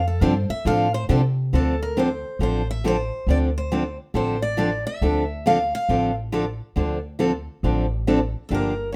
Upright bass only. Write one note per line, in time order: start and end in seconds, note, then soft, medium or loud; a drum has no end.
0.00 0.20 F2 medium
0.21 0.47 G2 loud
0.49 muted upright bass stroke soft
0.65 1.07 A2 medium
1.09 1.51 C3 medium
1.53 2.23 D2 medium
2.39 3.09 A1 medium
3.27 3.96 D2 medium
4.14 4.84 A1 medium
5.01 5.71 D2 medium
5.89 6.59 A1 medium
6.76 7.46 D2 medium
7.63 8.33 A1 medium
8.51 8.96 G1 medium